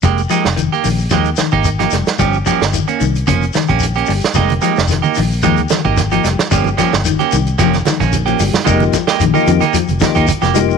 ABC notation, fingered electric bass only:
X:1
M:4/4
L:1/16
Q:"Swing 16ths" 1/4=111
K:Fm
V:1 name="Fingered electric bass" clef=bass
F,,,2 z F,,,2 z B,,,2 E,,2 z A,,,3 F,,, z | G,,,2 z G,,,2 z C,,2 F,,,2 z B,,,3 G,,, z | F,,,2 z F,,,2 z B,,,2 E,,2 z A,,,3 F,,, z | G,,,2 z G,,,2 z C,,2 F,,,2 z B,,,3 G,,, z |
F,,,2 z2 B,,, z F,, z2 F,,, z E,, z F,,,3 |]